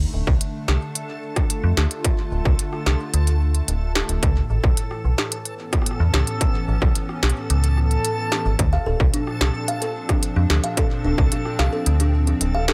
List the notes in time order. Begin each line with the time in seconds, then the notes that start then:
Already playing: D3 A3 A4
0.03 D4
0.14 D1
0.27 C2, kick
0.41 closed hi-hat
0.68 C2, cross-stick, snare
0.95 closed hi-hat
1.36 F4, kick, cross-stick, closed hi-hat
1.50 closed hi-hat
1.64 F2
1.77 D2, snare
1.91 closed hi-hat
2.04 kick, closed hi-hat
2.32 D1
2.45 C2, kick, cross-stick
2.59 closed hi-hat
2.73 cross-stick
2.86 C2, cross-stick, snare
3.14 D2, closed hi-hat
3.27 closed hi-hat
3.55 closed hi-hat
3.68 D1, closed hi-hat
3.95 cross-stick, snare
4.09 D1, closed hi-hat
4.23 C#2 A2, kick, closed hi-hat
4.50 G#1
4.64 B1, kick, cross-stick
4.77 closed hi-hat
4.87 E3, cross-stick
5.05 B1
5.18 snare
5.32 closed hi-hat
5.45 closed hi-hat
5.52 B3
5.62 C#4
5.73 kick, cross-stick, closed hi-hat
5.82 cross-stick
5.86 closed hi-hat
5.91 cross-stick
6.00 E2
6.14 C#2, snare
6.27 closed hi-hat
6.41 kick, closed hi-hat
6.68 G#1
6.82 B1, kick, cross-stick
6.95 closed hi-hat
7.09 cross-stick
7.23 B1, cross-stick, snare
7.30 closed hi-hat
7.50 C#2, closed hi-hat
7.64 closed hi-hat
7.77 cross-stick
7.91 closed hi-hat
8.05 closed hi-hat
8.32 cross-stick, snare
8.45 G#1
8.59 D2 A#2, kick, closed hi-hat
8.73 F5
8.86 D1 A4
9.00 C2, kick
9.07 F3 D4
9.14 D4, closed hi-hat
9.27 cross-stick
9.32 C4
9.41 C2 D4, snare
9.68 F5, closed hi-hat
9.82 A4, closed hi-hat
10.09 D4, kick, cross-stick, closed hi-hat
10.23 closed hi-hat
10.36 F2 D4
10.50 D2, snare
10.64 F5, closed hi-hat
10.77 A4, kick, closed hi-hat
11.04 D1 D4
11.18 C2, kick, cross-stick
11.32 D4, closed hi-hat
11.45 cross-stick
11.59 C2 F5, cross-stick, snare
11.73 A4
11.86 D2, closed hi-hat
12.00 D4, closed hi-hat
12.27 D4, closed hi-hat
12.41 D1, closed hi-hat
12.54 F5
12.68 A4, cross-stick, snare